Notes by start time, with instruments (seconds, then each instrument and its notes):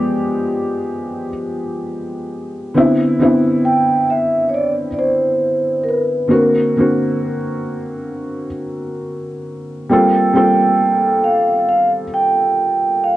Already playing: felt piano F3 G#3 B3 G4
2.74 felt piano D3 B3 C4 E4
3.19 felt piano D3 B3 C4 E4
3.65 vibraphone G5
4.10 vibraphone E5
4.49 vibraphone C#5
4.54 vibraphone D5
4.94 vibraphone D5
4.99 vibraphone C5
5.84 vibraphone A#4
5.89 vibraphone B4
6.28 felt piano D3 A#3 C4 F#4
6.33 vibraphone A#4
6.77 felt piano D3 A#3 C4 F#4
9.90 felt piano G3 A#3 C4 F4 A4, vibraphone G5
10.34 felt piano G3 A#3 C4 F4 A4, vibraphone G5
11.24 vibraphone F5
11.69 vibraphone F5
12.14 vibraphone G5
13.04 vibraphone F5